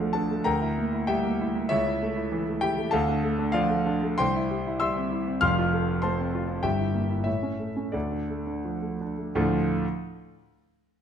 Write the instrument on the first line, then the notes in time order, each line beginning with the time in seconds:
grand piano
Already playing: D2 F3 D4 F4 D5 F5
0.00 A3
0.13 D4 A4 A5
0.31 A3
0.44 D2 A#4 G5 A#5
0.61 E4
0.78 A#3
0.93 E4
1.07 G3 G4 E5 G5
1.25 A#3
1.41 E4
1.55 A#3
1.69 C#2 E4 C#5 E5
1.87 E4
2.03 A3
2.17 E4
2.32 E3
2.48 A3
2.61 E4 G4 G5
2.78 A3
2.91 D2 A4 F5 A5
3.08 D4
3.24 A3
3.39 D4
3.52 F3 F4 D5 F5
3.69 A3
3.86 D4
4.03 A3
4.18 C2 C5 G5 C6
4.36 E4
4.51 G4
4.67 E4
4.80 G3 E5 C6 E6
4.96 C4
5.12 E4
5.27 C4
5.41 F1 F2 F5 C6 F6
5.58 F4
5.74 A4
5.89 F4
6.02 A3 C5 A5 C6
6.19 C4
6.35 F4
6.49 C4
6.63 G1 G2 G4 E5 G5
6.79 E4
6.94 A#3
7.10 E4
7.24 A2 E4 C#5 E5
7.43 C#4
7.60 A3
7.77 C#4
7.92 D2 D4 A4 D5
8.12 D4
8.29 A3
8.47 D4
8.65 F3
8.82 A3
9.01 D4
9.18 A3
9.35 D2 A2 F3 A3 D4 F4